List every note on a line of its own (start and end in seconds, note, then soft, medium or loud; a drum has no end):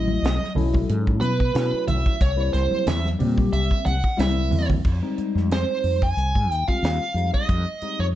0.00 0.18 A1 medium
0.00 0.34 F#3 medium
0.00 0.34 A3 medium
0.00 0.35 C#4 medium
0.00 0.35 E4 medium
0.00 0.52 D#5 medium
0.08 high conga medium
0.23 0.38 B1 medium
0.23 snare loud
0.23 closed hi-hat medium
0.40 snare soft
0.40 high conga medium
0.55 0.84 B1 medium
0.55 1.29 F#3 medium
0.55 1.29 C#4 medium
0.55 1.29 E4 loud
0.55 1.29 A4 medium
0.55 open hi-hat medium
0.55 low conga medium
0.74 kick medium
0.74 high conga medium
0.89 1.23 G#2 loud
0.89 closed hi-hat medium
1.07 kick medium
1.21 1.50 B2 medium
1.21 1.83 B4 medium
1.21 closed hi-hat medium
1.21 high conga medium
1.40 kick medium
1.54 1.70 B2 medium
1.54 2.15 F#3 medium
1.54 2.15 A3 medium
1.54 2.16 C#4 medium
1.54 2.16 E4 medium
1.54 snare loud
1.54 closed hi-hat medium
1.73 muted fretless electric bass stroke soft
1.88 2.03 B1 medium
1.88 2.20 E5 loud
1.88 closed hi-hat medium
1.88 low conga medium
2.06 kick medium
2.21 2.49 C2 loud
2.21 2.53 C#5 medium
2.21 kick loud
2.21 closed hi-hat medium
2.36 2.97 G3 medium
2.36 2.98 A#3 medium
2.36 2.98 C4 medium
2.36 2.98 E4 medium
2.53 2.69 C2 medium
2.53 2.86 C5 medium
2.53 snare soft
2.53 closed hi-hat medium
2.71 muted fretless electric bass stroke soft
2.71 high conga medium
2.87 3.15 E2 medium
2.87 3.07 E5 loud
2.87 snare loud
2.87 closed hi-hat medium
2.87 low conga medium
3.05 snare soft
3.05 high conga medium
3.19 3.48 A#2 medium
3.19 3.92 G3 medium
3.19 3.92 A#3 medium
3.19 3.92 C4 medium
3.19 3.93 G4 medium
3.19 open hi-hat medium
3.19 high conga medium
3.19 low conga medium
3.37 kick medium
3.37 high conga medium
3.53 3.68 C2 medium
3.53 3.85 E5 medium
3.53 closed hi-hat medium
3.71 kick medium
3.86 4.01 C2 medium
3.86 4.18 F#5 medium
3.86 closed hi-hat medium
3.86 high conga medium
4.04 kick medium
4.17 4.49 C2 medium
4.17 4.79 G3 medium
4.17 4.79 A#3 medium
4.17 4.79 C4 medium
4.17 4.79 E4 loud
4.17 4.67 E5 medium
4.17 snare loud
4.17 closed hi-hat medium
4.17 high conga medium
4.36 high conga medium
4.51 4.82 E2 medium
4.51 open hi-hat medium
4.51 low conga medium
4.70 kick medium
4.70 low conga medium
4.85 5.00 F2 medium
4.85 kick loud
4.85 crash medium
5.02 5.99 G3 medium
5.02 5.99 G#3 medium
5.02 5.99 C4 medium
5.02 5.99 D#4 medium
5.18 muted fretless electric bass stroke soft
5.18 closed hi-hat medium
5.35 5.63 F2 medium
5.35 snare soft
5.51 6.04 C5 medium
5.51 snare loud
5.51 closed hi-hat medium
5.84 6.12 F2 medium
5.84 open hi-hat medium
6.02 6.51 G#5 medium
6.02 kick medium
6.17 6.32 C2 medium
6.17 closed hi-hat medium
6.35 6.49 G#2 medium
6.35 kick medium
6.49 6.65 D#2 medium
6.49 6.70 G5 medium
6.49 closed hi-hat medium
6.68 7.04 G3 medium
6.68 7.04 G#3 medium
6.68 7.04 C4 medium
6.68 7.04 F4 medium
6.68 7.30 F5 medium
6.68 muted fretless electric bass stroke soft
6.68 kick medium
6.83 6.98 D#2 medium
6.83 snare loud
6.83 closed hi-hat medium
7.14 7.30 F2 medium
7.14 7.66 G3 medium
7.14 7.66 G#3 medium
7.14 7.66 C4 medium
7.14 7.66 D#4 medium
7.14 closed hi-hat medium
7.34 8.02 D#5 medium
7.34 kick medium
7.49 7.64 F2 medium
7.49 kick medium
7.49 closed hi-hat medium
7.82 8.07 G3 medium
7.82 8.07 G#3 medium
7.82 8.07 C4 medium
7.82 8.07 D#4 medium
7.82 muted fretless electric bass stroke soft
7.82 closed hi-hat medium
7.99 8.15 F2 medium
7.99 8.05 C#5 medium